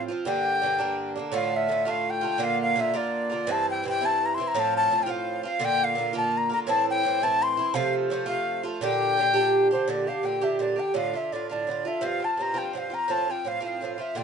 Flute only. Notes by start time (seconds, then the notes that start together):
0.26 G5
1.36 F5
1.56 E5
1.90 F5
2.10 G5
2.44 F5
2.62 F5
2.80 E5
2.97 D5
3.51 A5
3.71 G5
3.89 G5
4.06 A5
4.26 A#5
4.35 C6
4.48 A#5
4.59 A5
4.77 A5
5.03 G5
5.10 F5
5.45 F5
5.65 G5
5.84 F5
6.17 A5
6.37 A#5
6.53 A#5
6.69 A5
6.90 G5
7.23 A5
7.43 C6
7.75 F5
8.28 F5
8.83 G5
9.72 C5
9.90 D5
10.08 F5
10.25 G5
10.44 E5
10.61 D5
10.80 G5
10.97 F5
11.16 E5
11.33 D5
11.51 D5
11.87 E5
12.05 F5
12.24 A5
12.42 A#5
12.58 G5
12.78 F5
12.94 A#5
13.11 A5
13.31 G5
13.48 F5
13.65 F5
13.94 F5
14.00 E5
14.17 G5